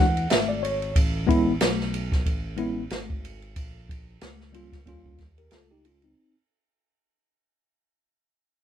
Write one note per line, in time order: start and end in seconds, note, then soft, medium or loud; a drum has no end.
0.00 0.27 E2 loud
0.00 0.28 F#5 medium
0.17 ride soft
0.30 0.92 G#1 medium
0.30 0.48 E5 medium
0.30 snare medium
0.30 hi-hat pedal soft
0.30 ride medium
0.49 0.61 D5 medium
0.63 0.93 C#5 medium
0.63 ride medium
0.82 ride soft
0.96 1.57 A1 loud
0.96 kick medium
0.96 ride medium
1.27 1.51 G#3 medium
1.27 1.52 B3 medium
1.27 1.52 C#4 medium
1.27 1.52 E4 loud
1.27 kick medium
1.27 ride medium
1.61 2.23 B1 medium
1.61 snare loud
1.61 hi-hat pedal medium
1.61 ride medium
1.80 snare soft
1.94 ride medium
2.12 kick medium
2.12 snare soft
2.12 ride soft
2.26 2.88 A1 loud
2.26 kick medium
2.26 ride medium
2.57 2.82 G#3 medium
2.57 2.82 B3 medium
2.57 2.82 C#4 medium
2.57 2.83 E4 medium
2.57 ride soft
2.90 3.58 G#1 medium
2.90 snare medium
2.90 hi-hat pedal soft
2.90 ride medium
3.10 kick medium
3.25 ride medium
3.42 ride soft
3.56 4.18 A#1 medium
3.56 kick loud
3.56 ride medium
3.89 kick medium
3.89 ride medium
4.21 4.83 C#2 medium
4.21 snare loud
4.21 hi-hat pedal medium
4.21 ride medium
4.40 snare soft
4.52 4.77 G3 medium
4.52 4.78 A#3 medium
4.52 4.78 C#4 medium
4.52 4.79 F4 medium
4.52 ride medium
4.73 kick medium
4.73 snare soft
4.73 ride soft
4.86 5.49 D#2 loud
4.86 5.26 G3 medium
4.86 5.26 A#3 medium
4.86 5.19 C#4 medium
4.86 5.20 F4 medium
4.86 kick medium
4.86 ride soft
5.06 kick medium
5.18 kick medium
5.18 snare soft
5.18 ride soft
5.38 5.51 G4 soft
5.38 5.51 A#4 medium
5.38 ride soft
5.51 6.14 C#2 medium
5.51 5.70 F4 soft
5.51 5.69 A4 medium
5.51 snare medium
5.51 hi-hat pedal soft
5.51 ride medium
5.71 5.84 D#4 medium
5.71 5.84 G4 medium
5.85 6.03 C#4 medium
5.85 6.02 F4 medium
5.85 ride medium
6.02 6.35 C4 soft
6.02 6.34 D#4 soft
6.02 ride soft